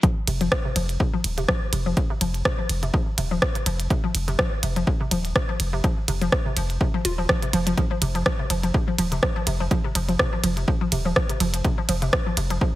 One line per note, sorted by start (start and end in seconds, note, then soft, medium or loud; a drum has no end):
0.03 0.06 F3 medium
0.03 kick loud
0.03 closed hi-hat soft
0.27 0.48 F1 loud
0.27 0.30 C3 medium
0.27 closed hi-hat medium
0.27 ride medium
0.41 0.43 F3 medium
0.41 closed hi-hat soft
0.52 kick loud
0.52 cross-stick loud
0.65 0.67 C3 medium
0.76 0.97 F1 medium
0.76 0.78 F3 medium
0.76 closed hi-hat medium
0.76 ride medium
0.89 closed hi-hat soft
1.00 1.02 C3 medium
1.00 kick loud
1.14 1.16 F3 medium
1.24 1.45 D#1 medium
1.24 closed hi-hat medium
1.24 ride medium
1.38 1.40 C3 medium
1.38 closed hi-hat soft
1.48 1.51 F3 medium
1.48 kick loud
1.48 cross-stick medium
1.73 1.94 F1 loud
1.73 1.75 C3 medium
1.73 closed hi-hat medium
1.73 ride medium
1.86 1.88 F3 medium
1.97 kick loud
1.97 closed hi-hat soft
2.10 2.12 C3 medium
2.21 2.42 F1 loud
2.21 2.23 F3 medium
2.21 closed hi-hat medium
2.21 ride medium
2.34 closed hi-hat soft
2.45 2.48 C3 medium
2.45 kick loud
2.45 cross-stick loud
2.59 2.61 F3 medium
2.69 2.90 F1 medium
2.69 closed hi-hat medium
2.69 ride medium
2.83 2.85 C3 medium
2.83 closed hi-hat soft
2.94 2.96 F3 medium
2.94 kick loud
3.18 3.39 D#1 medium
3.18 3.20 C3 medium
3.18 closed hi-hat medium
3.18 ride medium
3.31 3.33 F3 medium
3.42 kick loud
3.42 cross-stick loud
3.55 3.57 C3 medium
3.55 closed hi-hat soft
3.66 3.87 F1 loud
3.66 3.68 F3 medium
3.66 closed hi-hat loud
3.66 ride medium
3.80 closed hi-hat medium
3.90 3.93 C3 medium
3.90 kick loud
3.90 closed hi-hat soft
4.04 4.06 F3 medium
4.15 4.36 F1 loud
4.15 closed hi-hat medium
4.15 ride medium
4.28 4.30 C3 medium
4.28 closed hi-hat soft
4.39 4.41 F3 medium
4.39 kick loud
4.39 cross-stick loud
4.63 4.84 F1 medium
4.63 4.65 C3 medium
4.63 closed hi-hat medium
4.63 ride medium
4.76 4.78 F3 medium
4.76 closed hi-hat soft
4.87 kick loud
5.01 5.03 C3 medium
5.11 5.32 D#1 medium
5.11 5.14 F3 medium
5.11 closed hi-hat loud
5.11 ride medium
5.25 closed hi-hat soft
5.36 5.38 C3 medium
5.36 kick loud
5.36 cross-stick loud
5.49 5.51 F3 medium
5.60 5.81 F1 loud
5.60 closed hi-hat loud
5.60 ride medium
5.73 5.75 C3 medium
5.84 5.86 F3 medium
5.84 kick loud
5.84 closed hi-hat soft
6.08 6.29 F1 loud
6.08 6.10 C3 medium
6.08 closed hi-hat medium
6.08 ride medium
6.21 6.23 F3 medium
6.21 closed hi-hat soft
6.32 kick loud
6.32 cross-stick medium
6.46 6.48 C3 medium
6.57 6.77 F1 medium
6.57 6.59 F3 medium
6.57 closed hi-hat medium
6.57 ride medium
6.70 closed hi-hat soft
6.81 6.83 C3 medium
6.81 kick loud
6.94 6.96 F3 medium
7.05 7.26 D#1 medium
7.05 7.09 F4 medium
7.05 closed hi-hat medium
7.05 ride medium
7.18 7.21 F3 medium
7.29 7.33 F3 loud
7.29 kick loud
7.29 cross-stick loud
7.42 7.44 C3 medium
7.42 closed hi-hat soft
7.53 7.74 F1 medium
7.53 7.59 F3 loud
7.53 closed hi-hat medium
7.53 ride medium
7.67 7.70 F3 loud
7.67 closed hi-hat medium
7.77 7.80 F3 medium
7.77 kick loud
7.77 closed hi-hat soft
7.91 7.94 F3 medium
8.02 8.23 F1 loud
8.02 8.04 C3 medium
8.02 closed hi-hat medium
8.02 ride medium
8.15 8.17 F3 medium
8.15 closed hi-hat soft
8.26 8.30 F3 medium
8.26 kick loud
8.26 cross-stick loud
8.39 8.41 C3 medium
8.50 8.71 F1 medium
8.50 8.52 F3 medium
8.50 closed hi-hat medium
8.50 ride medium
8.63 8.66 F3 medium
8.63 closed hi-hat soft
8.74 8.77 C3 medium
8.74 kick loud
8.88 8.90 F3 medium
8.98 9.19 D#1 medium
8.98 9.02 F3 medium
8.98 closed hi-hat medium
8.98 ride medium
9.12 9.14 C3 medium
9.12 closed hi-hat soft
9.23 9.25 F3 medium
9.23 kick loud
9.23 cross-stick medium
9.36 9.39 F3 medium
9.47 9.68 F1 loud
9.47 9.49 C3 medium
9.47 closed hi-hat medium
9.47 ride medium
9.60 9.62 F3 medium
9.71 9.75 F3 medium
9.71 kick loud
9.71 closed hi-hat soft
9.84 9.86 C3 medium
9.95 10.16 F1 loud
9.95 9.97 F3 medium
9.95 closed hi-hat medium
9.95 ride medium
10.09 10.12 F3 medium
10.09 closed hi-hat soft
10.19 10.22 C3 medium
10.19 kick loud
10.19 cross-stick medium
10.33 10.35 F3 medium
10.44 10.65 F1 medium
10.44 10.47 F3 medium
10.44 closed hi-hat medium
10.44 ride medium
10.57 10.59 C3 medium
10.57 closed hi-hat soft
10.68 10.70 F3 medium
10.68 kick loud
10.81 10.84 F3 medium
10.92 11.13 D#1 medium
10.92 10.94 C3 medium
10.92 closed hi-hat medium
10.92 ride medium
11.05 11.07 F3 medium
11.16 11.20 F3 medium
11.16 kick loud
11.16 cross-stick medium
11.30 11.32 C3 medium
11.30 closed hi-hat soft
11.40 11.61 F1 loud
11.40 11.43 F3 medium
11.40 closed hi-hat medium
11.40 ride medium
11.54 11.57 F3 medium
11.54 closed hi-hat medium
11.65 11.67 C3 medium
11.65 kick loud
11.65 closed hi-hat soft
11.78 11.80 F3 medium
11.89 12.10 F1 medium
11.89 11.93 F3 medium
11.89 closed hi-hat medium
11.89 ride medium
12.02 12.04 C3 medium
12.02 closed hi-hat soft
12.13 12.15 F3 medium
12.13 kick loud
12.13 cross-stick loud
12.26 12.29 F3 medium
12.37 12.58 F1 medium
12.37 12.39 C3 medium
12.37 closed hi-hat medium
12.37 ride medium
12.50 12.53 F3 medium
12.50 closed hi-hat soft
12.61 12.65 F3 medium
12.61 kick loud